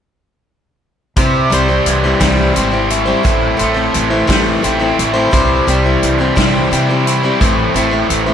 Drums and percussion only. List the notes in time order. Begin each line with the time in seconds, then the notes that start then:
1.16 kick, closed hi-hat
1.52 closed hi-hat
1.86 closed hi-hat
2.20 kick, snare, closed hi-hat
2.56 closed hi-hat
2.90 closed hi-hat
3.25 kick, closed hi-hat
3.59 closed hi-hat
3.94 closed hi-hat
4.29 kick, snare, closed hi-hat
4.64 closed hi-hat
4.99 closed hi-hat
5.33 kick, closed hi-hat
5.68 closed hi-hat
6.03 closed hi-hat
6.37 kick, snare, closed hi-hat
6.72 closed hi-hat
7.07 closed hi-hat
7.41 kick, closed hi-hat
7.75 closed hi-hat
8.10 closed hi-hat